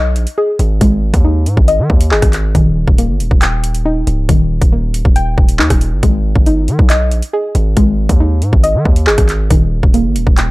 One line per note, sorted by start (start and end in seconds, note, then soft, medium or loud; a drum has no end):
0.00 0.17 B1 loud
0.00 0.80 G#3 medium
0.00 1.23 D#4 medium
0.00 1.67 D#5 medium
0.16 0.26 A#1 loud
0.16 closed hi-hat medium
0.27 closed hi-hat medium
0.38 2.10 G#4 loud
0.59 0.80 G#1 loud
0.59 closed hi-hat medium
0.81 1.12 G#1 loud
0.81 2.55 G#3 loud
0.81 kick loud
0.81 closed hi-hat medium
1.14 1.48 D#2 loud
1.14 kick loud
1.14 closed hi-hat medium
1.24 2.55 D#4 medium
1.46 1.57 G#2 loud
1.46 closed hi-hat medium
1.57 1.80 G#1 loud
1.57 kick loud
1.68 2.55 D#5 medium
1.68 closed hi-hat medium
1.79 1.89 D#3 loud
1.90 2.13 D#2 loud
1.90 kick loud
2.01 closed hi-hat medium
2.11 2.22 G1 loud
2.11 2.55 G#4 loud
2.11 clap loud
2.22 2.54 G#1 loud
2.22 kick medium
2.22 cross-stick medium
2.22 closed hi-hat medium
2.33 clap medium
2.33 closed hi-hat medium
2.55 2.86 D#1 loud
2.55 4.28 D#3 medium
2.55 kick loud
2.55 closed hi-hat medium
2.88 3.11 D#1 loud
2.88 kick loud
2.98 4.71 A#3 medium
2.98 closed hi-hat medium
3.09 3.22 G1 loud
3.20 3.31 D#1 loud
3.20 closed hi-hat medium
3.31 4.04 D#1 loud
3.31 kick loud
3.42 5.15 G5 medium
3.42 clap loud
3.42 closed hi-hat medium
3.64 closed hi-hat medium
3.75 closed hi-hat medium
3.85 5.58 D#4 medium
4.07 4.28 C#1 loud
4.07 closed hi-hat medium
4.29 4.60 D#1 loud
4.29 6.03 D#3 medium
4.29 kick loud
4.29 closed hi-hat medium
4.62 5.03 D#1 loud
4.62 kick loud
4.62 closed hi-hat medium
4.72 6.03 A#3 medium
4.94 closed hi-hat medium
5.05 5.36 D#1 loud
5.05 kick loud
5.16 6.03 G5 medium
5.16 closed hi-hat medium
5.38 5.61 D#1 loud
5.38 kick loud
5.49 closed hi-hat medium
5.59 5.70 D#2 loud
5.59 6.03 D#4 medium
5.59 clap loud
5.70 5.94 D#1 loud
5.70 kick medium
5.70 cross-stick loud
5.70 closed hi-hat medium
5.81 closed hi-hat medium
5.92 6.02 G1 loud
6.03 6.34 G#1 loud
6.03 7.75 G#3 medium
6.03 kick loud
6.03 closed hi-hat medium
6.35 6.70 G1 loud
6.35 kick loud
6.46 8.19 D#4 medium
6.46 closed hi-hat medium
6.68 6.78 D#3 loud
6.68 closed hi-hat medium
6.79 7.13 B1 loud
6.79 kick loud
6.90 8.62 D#5 medium
6.90 clap loud
6.90 closed hi-hat medium
7.11 7.22 A#1 loud
7.11 closed hi-hat medium
7.22 closed hi-hat medium
7.33 9.06 G#4 loud
7.55 7.76 G#1 loud
7.55 closed hi-hat medium
7.77 8.08 G#1 loud
7.77 9.51 G#3 medium
7.77 kick loud
7.77 closed hi-hat medium
8.09 8.43 D#2 loud
8.09 kick loud
8.09 closed hi-hat medium
8.20 9.51 D#4 medium
8.42 8.52 G#2 loud
8.42 closed hi-hat medium
8.53 8.76 G#1 loud
8.53 kick loud
8.64 9.51 D#5 medium
8.64 closed hi-hat medium
8.74 8.85 D#3 loud
8.85 9.09 D#2 loud
8.85 kick loud
8.96 closed hi-hat medium
9.07 9.17 G1 loud
9.07 9.51 G#4 loud
9.07 clap loud
9.18 9.49 G#1 loud
9.18 kick loud
9.18 cross-stick loud
9.18 closed hi-hat medium
9.29 clap medium
9.29 closed hi-hat medium
9.50 9.82 D#1 loud
9.50 10.51 D#3 medium
9.50 kick loud
9.50 closed hi-hat medium
9.83 10.06 D#1 loud
9.83 kick loud
9.94 10.51 A#3 medium
9.94 closed hi-hat medium
10.05 10.17 G1 loud
10.16 10.26 D#1 loud
10.16 closed hi-hat medium
10.27 10.51 D#1 loud
10.27 kick loud
10.38 10.51 G5 medium
10.38 clap loud
10.38 closed hi-hat medium